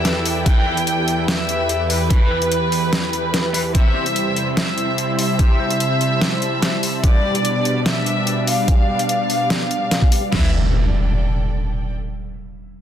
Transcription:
0.00 3.71 E2 medium
0.00 3.71 E3 medium
0.00 4.89 E4 medium
0.00 3.71 G4 medium
0.00 5.04 A4 medium
0.00 3.71 B4 medium
0.00 5.07 D5 medium
0.00 0.38 E5 loud
0.00 5.07 G5 medium
0.05 snare medium
0.05 closed hi-hat medium
0.26 open hi-hat medium
0.46 0.64 E4 medium
0.46 0.64 B4 medium
0.46 0.64 E5 medium
0.46 1.20 G5 loud
0.46 kick loud
0.46 closed hi-hat medium
0.66 0.72 E4 medium
0.66 0.72 B4 medium
0.66 0.72 E5 loud
0.77 closed hi-hat medium
0.87 closed hi-hat medium
1.08 closed hi-hat medium
1.28 1.82 E5 loud
1.28 snare loud
1.28 closed hi-hat medium
1.49 closed hi-hat medium
1.69 closed hi-hat medium
1.90 3.67 B4 loud
1.90 open hi-hat medium
2.10 2.29 E4 medium
2.10 2.29 B4 medium
2.10 2.29 E5 medium
2.10 kick loud
2.10 closed hi-hat medium
2.31 2.36 E4 medium
2.31 2.36 B4 medium
2.31 2.36 E5 medium
2.42 closed hi-hat medium
2.52 closed hi-hat medium
2.72 open hi-hat medium
2.93 snare loud
2.93 closed hi-hat medium
3.13 closed hi-hat soft
3.34 snare medium
3.34 closed hi-hat medium
3.54 3.60 E4 medium
3.54 3.60 B4 medium
3.54 3.60 E5 medium
3.54 open hi-hat medium
3.75 7.00 C3 medium
3.75 10.28 G3 medium
3.75 3.93 C4 medium
3.75 7.04 C4 medium
3.75 7.00 E4 medium
3.75 3.93 G4 medium
3.75 7.00 C5 medium
3.75 3.93 C5 medium
3.75 4.49 E5 loud
3.75 kick loud
3.75 closed hi-hat medium
3.84 10.32 C5 medium
3.84 10.32 B5 medium
3.95 4.01 C4 medium
3.95 4.01 G4 medium
3.95 4.01 C5 loud
4.06 10.32 A5 medium
4.06 closed hi-hat soft
4.16 closed hi-hat medium
4.36 closed hi-hat soft
4.57 5.11 E5 medium
4.57 snare loud
4.57 closed hi-hat medium
4.78 closed hi-hat soft
4.98 closed hi-hat medium
5.19 6.96 E5 loud
5.19 open hi-hat medium
5.39 5.57 C4 medium
5.39 5.57 G4 medium
5.39 5.57 C5 medium
5.39 kick loud
5.39 closed hi-hat medium
5.59 5.65 C4 medium
5.59 5.65 G4 medium
5.59 5.65 C5 medium
5.70 closed hi-hat soft
5.80 closed hi-hat medium
6.01 closed hi-hat soft
6.21 snare loud
6.21 closed hi-hat medium
6.42 closed hi-hat soft
6.62 snare medium
6.62 closed hi-hat medium
6.83 open hi-hat medium
7.03 10.29 B2 medium
7.03 7.22 G3 medium
7.03 10.29 D4 medium
7.03 7.22 D4 medium
7.03 7.22 G4 medium
7.03 10.29 D5 medium
7.03 7.78 D5 loud
7.03 kick loud
7.03 closed hi-hat medium
7.24 7.30 G3 medium
7.24 7.30 D4 medium
7.24 7.30 G4 loud
7.35 closed hi-hat medium
7.45 closed hi-hat medium
7.65 closed hi-hat medium
7.86 8.40 E5 loud
7.86 snare loud
7.86 closed hi-hat medium
8.06 closed hi-hat soft
8.27 closed hi-hat medium
8.47 10.24 F5 loud
8.47 open hi-hat medium
8.68 8.86 G3 medium
8.68 8.86 D4 medium
8.68 8.86 G4 medium
8.68 kick loud
8.68 closed hi-hat medium
8.88 8.94 G3 medium
8.88 8.94 D4 medium
8.88 8.94 G4 loud
8.99 closed hi-hat medium
9.09 closed hi-hat medium
9.30 open hi-hat medium
9.50 snare loud
9.50 closed hi-hat medium
9.71 closed hi-hat medium
9.91 snare medium
9.91 closed hi-hat medium
10.02 kick medium
10.12 10.17 G3 medium
10.12 10.17 D4 medium
10.12 10.17 G4 medium
10.12 open hi-hat loud
10.32 10.51 E3 medium
10.32 10.51 B3 medium
10.32 10.48 E4 medium
10.32 10.51 G4 medium
10.32 11.93 A4 medium
10.32 10.48 B4 medium
10.32 10.51 E5 medium
10.32 10.48 E5 medium
10.32 snare loud
10.32 floor tom loud
10.32 crash medium
10.32 impact medium
10.39 11.93 D5 medium
10.45 11.93 G5 medium

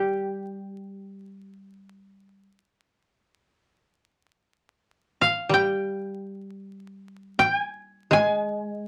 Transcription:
0.00 2.46 G3 medium
0.00 1.87 G4 medium
0.00 0.56 G5 medium
5.21 6.66 F5 medium
5.49 8.18 G3 medium
5.54 7.36 G5 medium
7.39 7.56 G5 loud
7.56 8.13 G#5 loud
8.11 8.88 G#3 medium
8.11 8.88 G#5 medium

